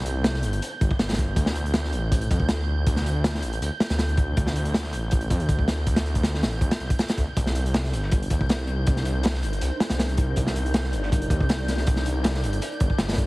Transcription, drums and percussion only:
0.06 closed hi-hat
0.24 snare, closed hi-hat
0.34 snare
0.43 closed hi-hat
0.53 closed hi-hat
0.62 closed hi-hat
0.81 kick, closed hi-hat
0.91 kick
0.99 snare, closed hi-hat
1.09 snare, closed hi-hat
1.13 snare, closed hi-hat
1.18 kick, closed hi-hat
1.36 kick, closed hi-hat
1.46 snare
1.55 closed hi-hat
1.66 closed hi-hat
1.74 snare, closed hi-hat
1.85 snare
1.93 closed hi-hat
2.12 kick, closed hi-hat
2.21 closed hi-hat
2.31 kick, closed hi-hat
2.40 kick
2.49 snare, closed hi-hat
2.86 kick, closed hi-hat
2.96 snare
3.06 closed hi-hat
3.24 snare, closed hi-hat
3.35 snare
3.42 closed hi-hat
3.53 closed hi-hat
3.62 closed hi-hat
3.80 snare, closed hi-hat
3.90 snare, closed hi-hat
3.99 snare, closed hi-hat
4.09 closed hi-hat
4.17 kick, closed hi-hat
4.37 kick, closed hi-hat
4.46 snare
4.56 closed hi-hat
4.65 closed hi-hat
4.74 snare, closed hi-hat
4.84 snare
4.93 closed hi-hat
5.11 kick, closed hi-hat
5.21 closed hi-hat
5.30 kick, closed hi-hat
5.40 closed hi-hat
5.49 kick, closed hi-hat
5.59 kick
5.68 snare, closed hi-hat
5.87 kick, closed hi-hat
5.96 snare, closed hi-hat
6.06 closed hi-hat
6.15 kick, closed hi-hat
6.23 snare, closed hi-hat
6.34 snare
6.43 snare, closed hi-hat
6.52 closed hi-hat
6.61 kick, closed hi-hat
6.71 snare, closed hi-hat
6.80 closed hi-hat
6.90 kick, closed hi-hat
6.99 snare, closed hi-hat
7.08 snare, closed hi-hat
7.18 kick, closed hi-hat
7.37 kick, closed hi-hat
7.46 snare
7.55 closed hi-hat
7.66 closed hi-hat
7.74 snare, closed hi-hat
7.84 snare, closed hi-hat
7.93 closed hi-hat
8.02 snare
8.11 kick, closed hi-hat
8.22 closed hi-hat
8.30 kick, closed hi-hat
8.41 kick
8.49 snare, closed hi-hat
8.59 closed hi-hat
8.67 closed hi-hat
8.87 kick, closed hi-hat
8.96 snare
9.05 closed hi-hat
9.23 snare, closed hi-hat, open hi-hat
9.26 snare
9.34 snare
9.43 closed hi-hat
9.53 closed hi-hat
9.61 closed hi-hat
9.80 snare, closed hi-hat
9.90 snare, closed hi-hat
9.99 snare, closed hi-hat
10.09 closed hi-hat
10.17 kick, closed hi-hat
10.36 kick, closed hi-hat
10.47 snare
10.56 closed hi-hat
10.66 closed hi-hat
10.74 snare, closed hi-hat
10.84 snare, closed hi-hat
10.93 closed hi-hat
11.03 snare
11.12 kick, closed hi-hat
11.22 closed hi-hat
11.30 kick, closed hi-hat
11.40 kick
11.49 snare, closed hi-hat
11.59 closed hi-hat
11.68 snare, closed hi-hat
11.78 snare
11.87 kick, closed hi-hat
11.96 snare
12.05 closed hi-hat
12.24 snare, closed hi-hat, open hi-hat
12.34 snare
12.43 closed hi-hat
12.53 closed hi-hat
12.62 closed hi-hat
12.72 closed hi-hat
12.80 kick, closed hi-hat
12.90 kick
12.98 snare, closed hi-hat
13.09 snare, closed hi-hat
13.13 snare, closed hi-hat
13.18 kick, closed hi-hat

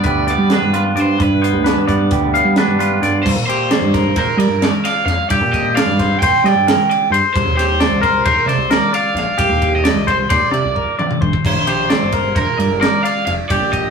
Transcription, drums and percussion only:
0.04 kick, closed hi-hat
0.28 closed hi-hat
0.50 snare, closed hi-hat
0.74 closed hi-hat
0.97 closed hi-hat
1.20 kick, closed hi-hat
1.44 closed hi-hat
1.66 snare, closed hi-hat
1.89 kick, closed hi-hat
2.11 kick, closed hi-hat
2.35 closed hi-hat
2.56 snare, closed hi-hat
2.80 closed hi-hat
3.03 snare, closed hi-hat
3.26 kick, crash
3.50 ride
3.71 snare, ride
3.94 kick, snare, ride
4.16 kick, ride
4.40 ride
4.62 snare, ride
4.85 snare, ride
5.08 snare, ride
5.30 kick, ride
5.53 kick, snare, ride
5.77 snare, ride
5.99 kick, snare, ride
6.22 kick, ride
6.46 snare, ride
6.68 snare, ride
6.91 ride
7.14 ride
7.36 kick, ride
7.59 snare, ride
7.80 snare, ride
8.03 kick, snare, ride
8.26 kick, ride
8.49 snare, ride
8.71 snare, ride
8.94 ride
9.17 snare, ride
9.38 kick, ride
9.62 kick, ride
9.85 snare, ride
10.08 kick, snare, ride
10.30 kick, ride
10.54 ride
10.76 kick
10.99 mid tom
11.11 mid tom
11.22 kick
11.33 kick
11.45 kick, crash
11.67 ride
11.90 snare, ride
12.12 kick, ride
12.36 kick, ride
12.60 ride
12.82 snare, ride
13.05 ride
13.27 ride
13.50 kick, ride
13.73 kick, ride

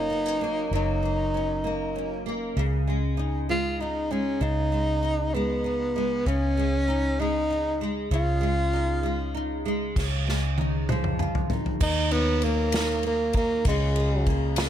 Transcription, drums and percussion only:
9.96 kick, snare, crash
10.28 snare
10.58 high tom
10.89 mid tom
11.04 mid tom
11.19 mid tom
11.35 floor tom
11.50 floor tom
11.66 floor tom
11.81 kick, crash
12.11 ride
12.42 ride
12.72 snare, ride
13.03 ride
13.33 kick, ride
13.65 kick, ride
13.96 ride
14.27 kick, ride
14.56 snare, ride

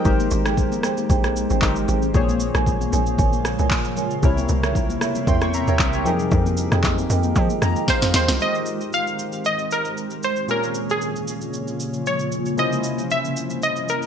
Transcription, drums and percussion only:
0.05 kick, low conga, shaker
0.20 high conga, shaker
0.31 shaker
0.46 cross-stick, shaker
0.57 kick, low conga, shaker
0.72 high conga, shaker
0.83 cross-stick, shaker
0.97 high conga, shaker
1.10 kick, shaker
1.24 cross-stick, high conga, shaker
1.36 shaker
1.50 shaker
1.62 kick, clap, low conga, shaker
1.76 shaker
1.88 low conga, shaker
2.02 shaker
2.14 kick, low conga, shaker
2.29 high conga, shaker
2.40 shaker
2.55 cross-stick, shaker
2.66 kick, low conga, shaker
2.81 high conga, shaker
2.93 shaker
3.06 high conga, shaker
3.19 kick, shaker
3.33 high conga, shaker
3.45 cross-stick, shaker
3.59 shaker
3.71 kick, clap, low conga, shaker
3.84 shaker
3.97 low conga, shaker
4.11 shaker
4.23 kick, low conga, shaker
4.37 high conga, shaker
4.49 shaker
4.63 cross-stick, shaker
4.75 kick, low conga, shaker
4.90 high conga, shaker
5.01 cross-stick, shaker
5.15 high conga, shaker
5.27 kick, shaker
5.41 cross-stick, high conga, shaker
5.54 shaker
5.67 shaker
5.79 kick, clap, low conga, shaker
5.93 shaker
6.06 low conga, shaker
6.19 shaker
6.31 kick, low conga, shaker
6.46 high conga, shaker
6.57 shaker
6.72 cross-stick, high conga, shaker
6.84 kick, clap, low conga, shaker
6.98 high conga, shaker
7.10 shaker
7.23 high conga, shaker
7.36 kick, shaker
7.50 high conga, shaker
7.62 cross-stick, shaker
7.76 shaker
7.88 kick, snare, low conga, shaker
8.02 snare, shaker
8.14 snare, low conga, shaker
8.28 snare, shaker
8.40 shaker
8.55 shaker
8.66 shaker
8.81 shaker
8.93 shaker
9.07 shaker
9.19 shaker
9.32 shaker
9.45 shaker
9.59 shaker
9.71 shaker
9.85 shaker
9.97 shaker
10.10 shaker
10.23 shaker
10.36 shaker
10.49 shaker
10.63 shaker
10.74 shaker
10.89 shaker
11.01 shaker
11.16 shaker
11.28 shaker
11.41 shaker
11.54 shaker
11.67 shaker
11.80 shaker
11.93 shaker
12.06 shaker
12.19 shaker
12.32 shaker
12.46 shaker
12.58 shaker
12.72 shaker
12.84 shaker
12.98 shaker
13.10 shaker
13.25 shaker
13.37 shaker
13.50 shaker
13.62 shaker
13.76 shaker
13.89 shaker
14.02 shaker

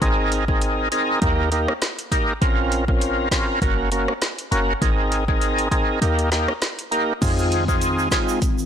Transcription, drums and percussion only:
0.02 kick, closed hi-hat
0.32 closed hi-hat
0.48 kick
0.61 closed hi-hat
0.92 closed hi-hat
1.22 kick, closed hi-hat
1.52 closed hi-hat
1.68 cross-stick
1.82 snare, closed hi-hat
1.99 closed hi-hat
2.12 kick, closed hi-hat
2.42 kick, closed hi-hat
2.72 closed hi-hat
2.88 kick
3.01 closed hi-hat
3.31 kick, snare, closed hi-hat
3.62 kick, closed hi-hat
3.92 closed hi-hat
4.08 cross-stick
4.22 snare, closed hi-hat
4.38 closed hi-hat
4.52 closed hi-hat
4.82 kick, closed hi-hat
5.12 closed hi-hat
5.28 kick
5.42 closed hi-hat
5.58 closed hi-hat
5.72 kick, closed hi-hat
6.02 closed hi-hat
6.19 closed hi-hat
6.32 snare, closed hi-hat
6.48 cross-stick
6.62 snare, closed hi-hat
6.79 closed hi-hat
6.92 closed hi-hat
7.22 kick, closed hi-hat, crash, shaker
7.38 shaker
7.52 closed hi-hat
7.68 kick, shaker
7.81 closed hi-hat, shaker
7.99 shaker
8.11 kick, snare, closed hi-hat, shaker
8.28 shaker
8.42 kick, closed hi-hat, shaker
8.58 shaker

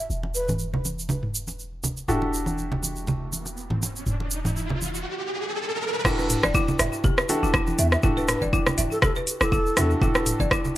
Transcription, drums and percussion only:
0.11 shaker
0.23 muted conga
0.35 shaker
0.48 mid tom, high conga, shaker
0.59 shaker
0.74 muted conga, low conga
0.85 high conga, shaker
0.99 shaker
1.09 muted conga, low conga, shaker
1.23 mid tom
1.35 shaker
1.47 muted conga, high conga, shaker
1.59 shaker
1.84 muted conga, low conga, shaker
1.97 shaker
2.08 mid tom, shaker
2.22 muted conga
2.34 shaker
2.46 high conga, shaker
2.58 shaker
2.72 muted conga, low conga
2.83 high conga, shaker
2.96 shaker
3.07 muted conga, low conga, shaker
3.33 high conga, shaker
3.46 muted conga, shaker
3.57 shaker
3.70 mid tom, high conga
3.83 muted conga, shaker
3.96 shaker
4.06 mid tom, shaker
4.20 muted conga
4.31 shaker
4.45 mid tom, high conga, shaker
4.57 shaker
4.69 muted conga, low conga
4.81 high conga, shaker
4.95 shaker
6.05 kick, cross-stick, mid tom, crash, shaker
6.18 muted conga, shaker
6.30 mid tom, open hi-hat, shaker
6.43 kick, cross-stick, high conga, shaker
6.54 kick, shaker
6.68 muted conga, low conga, shaker
6.79 cross-stick, mid tom, open hi-hat, shaker
6.93 shaker
7.04 kick, muted conga, low conga, shaker
7.18 cross-stick, shaker
7.29 open hi-hat, high conga, shaker
7.43 muted conga, shaker
7.54 kick, cross-stick, shaker
7.67 high conga, shaker
7.79 open hi-hat, muted conga, high conga, shaker
7.92 cross-stick, shaker
8.03 kick, mid tom, shaker
8.17 muted conga, shaker
8.28 cross-stick, mid tom, open hi-hat, shaker
8.42 kick, high conga, shaker
8.53 kick, shaker
8.66 cross-stick, muted conga, low conga, shaker
8.78 mid tom, open hi-hat, high conga, shaker
8.92 shaker
9.02 kick, cross-stick, muted conga, low conga, shaker
9.16 shaker
9.27 open hi-hat, shaker
9.41 cross-stick, muted conga, shaker
9.52 kick, shaker
9.66 shaker
9.77 cross-stick, open hi-hat, muted conga, high conga, low conga, shaker
9.91 shaker
10.01 kick, mid tom, shaker
10.15 cross-stick, muted conga, shaker
10.26 mid tom, open hi-hat, shaker
10.40 kick, high conga, shaker
10.51 kick, cross-stick, shaker
10.65 muted conga, low conga, shaker

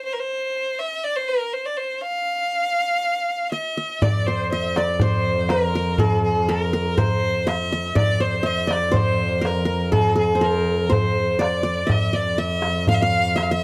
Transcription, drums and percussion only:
4.02 darbuka dum
4.63 darbuka ka
4.76 darbuka tek
4.87 darbuka ka
5.00 darbuka dum
5.24 darbuka ka
5.37 darbuka ka
5.49 darbuka tek
5.74 darbuka ka
5.98 darbuka dum
6.36 darbuka ka
6.61 darbuka ka
6.86 darbuka ka
6.98 darbuka dum
7.24 darbuka ka
7.36 darbuka ka
7.47 darbuka tek
7.72 darbuka ka
7.96 darbuka dum
8.34 darbuka ka
8.71 darbuka tek
8.83 darbuka ka
8.94 darbuka dum
9.20 darbuka ka
9.32 darbuka ka
9.45 darbuka tek
9.69 darbuka ka
9.93 darbuka dum
10.19 darbuka ka
10.30 darbuka ka
10.43 darbuka ka
10.56 darbuka ka
10.80 darbuka ka
10.92 darbuka dum
11.17 darbuka ka
11.41 darbuka tek
11.65 darbuka ka
11.89 darbuka dum
12.26 darbuka ka
12.50 darbuka ka
12.62 darbuka tek
12.76 darbuka ka
12.87 darbuka dum
13.13 darbuka ka
13.26 darbuka ka
13.38 darbuka tek

